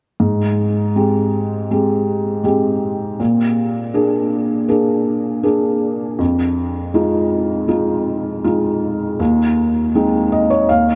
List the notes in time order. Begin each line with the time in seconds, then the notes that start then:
0.20 G#2
0.96 G#3 C4 G4
1.71 G#3 C4 G4
2.44 G#3 C4 G4
3.20 A#2
3.94 A#3 D4 G#4
4.68 A#3 D4 G#4
5.43 A#3 D4 G#4
6.18 F2
6.94 G#3 D#4 F4
7.68 G#3 D#4 F4
8.44 G#3 D#4 F4
9.19 D#2
9.95 G#3 C4 D#4
10.32 D#5
10.50 C#5
10.69 D#2 F5